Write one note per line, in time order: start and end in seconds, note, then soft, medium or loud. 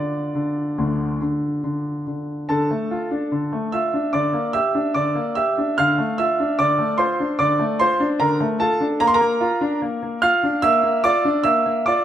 0.00 0.33 D3 soft
0.00 2.44 D4 soft
0.00 2.45 F4 soft
0.00 1.20 D5 soft
0.35 0.77 D3 soft
0.78 1.20 D2 soft
0.78 1.20 D3 soft
1.21 1.62 D3 soft
1.64 2.05 D3 soft
2.07 2.48 D3 soft
2.49 2.69 D3 medium
2.49 3.69 A4 medium
2.49 3.68 A5 medium
2.71 2.92 A3 soft
2.91 3.12 F4 soft
3.11 3.32 D4 soft
3.32 3.51 D3 soft
3.53 3.74 A3 soft
3.72 3.94 F4 soft
3.72 4.11 E5 soft
3.72 4.09 E6 medium
3.94 4.14 D4 soft
4.13 4.33 D3 medium
4.13 4.52 D5 medium
4.13 4.54 D6 medium
4.33 4.55 A#3 soft
4.53 4.75 G4 soft
4.53 4.92 E5 medium
4.53 4.94 E6 medium
4.75 4.96 D4 soft
4.94 5.15 D3 soft
4.94 5.33 D5 medium
4.94 5.19 D6 medium
5.15 5.37 A#3 soft
5.35 5.57 G4 soft
5.35 5.74 E5 medium
5.35 5.76 E6 medium
5.58 5.77 D4 soft
5.78 5.97 D3 medium
5.78 6.16 F5 medium
5.78 6.14 F6 medium
5.98 6.19 A3 soft
6.18 6.40 F4 soft
6.18 6.56 E5 medium
6.18 6.54 E6 medium
6.40 6.60 D4 soft
6.59 6.78 D3 soft
6.59 6.97 D5 medium
6.59 6.99 D6 medium
6.79 7.00 A3 soft
6.98 7.20 F4 medium
6.98 7.37 C5 medium
6.98 7.39 C6 medium
7.20 7.41 D4 soft
7.39 7.59 D3 medium
7.39 7.77 D5 medium
7.39 7.63 D6 medium
7.59 7.81 A3 soft
7.79 8.01 F4 medium
7.79 8.18 C5 medium
7.79 8.04 C6 medium
8.00 8.21 D4 medium
8.20 8.40 D3 medium
8.20 8.58 A#4 medium
8.20 8.44 A#5 medium
8.40 8.62 A3 soft
8.60 8.82 F4 medium
8.60 8.98 A4 medium
8.60 8.84 A5 medium
8.80 9.01 D4 medium
9.00 9.19 A#3 medium
9.00 9.07 A#5 medium
9.07 9.14 C6 medium
9.14 10.18 A#4 medium
9.14 9.79 A#5 medium
9.21 9.42 A#3 medium
9.41 9.62 F4 medium
9.61 9.82 D4 medium
9.82 10.01 A#3 medium
10.03 10.23 A#3 soft
10.22 10.43 F4 medium
10.22 10.60 F5 medium
10.22 10.46 F6 loud
10.43 10.64 D4 medium
10.62 10.82 A#3 medium
10.62 11.01 E5 medium
10.62 10.87 E6 loud
10.83 11.05 A#3 medium
11.04 11.25 F4 medium
11.04 11.42 D5 medium
11.04 11.28 D6 medium
11.25 11.46 D4 medium
11.44 11.64 A#3 medium
11.44 11.83 E5 medium
11.44 11.81 E6 loud
11.66 11.87 A#3 medium
11.86 12.04 F4 medium
11.86 12.04 D5 medium
11.86 12.04 D6 medium